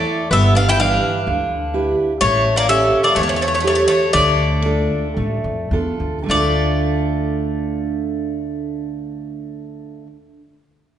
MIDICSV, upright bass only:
0, 0, Header, 1, 2, 480
1, 0, Start_track
1, 0, Key_signature, -1, "minor"
1, 0, Tempo, 477707
1, 313, Time_signature, 4, 2, 24, 8
1, 3673, Tempo, 509338
1, 5113, Tempo, 555556
1, 6073, Tempo, 574713
1, 9994, End_track
2, 0, Start_track
2, 0, Title_t, "Upright bass"
2, 0, Program_c, 0, 32
2, 308, Note_on_c, 0, 31, 98
2, 982, Note_off_c, 0, 31, 0
2, 1273, Note_on_c, 0, 38, 81
2, 1941, Note_off_c, 0, 38, 0
2, 2226, Note_on_c, 0, 33, 87
2, 2896, Note_off_c, 0, 33, 0
2, 3178, Note_on_c, 0, 40, 85
2, 3858, Note_off_c, 0, 40, 0
2, 4131, Note_on_c, 0, 38, 100
2, 4815, Note_off_c, 0, 38, 0
2, 5096, Note_on_c, 0, 33, 80
2, 5266, Note_off_c, 0, 33, 0
2, 5337, Note_on_c, 0, 41, 74
2, 5554, Note_off_c, 0, 41, 0
2, 5568, Note_on_c, 0, 40, 79
2, 5792, Note_off_c, 0, 40, 0
2, 5817, Note_on_c, 0, 38, 76
2, 6043, Note_off_c, 0, 38, 0
2, 6066, Note_on_c, 0, 38, 90
2, 9213, Note_off_c, 0, 38, 0
2, 9994, End_track
0, 0, End_of_file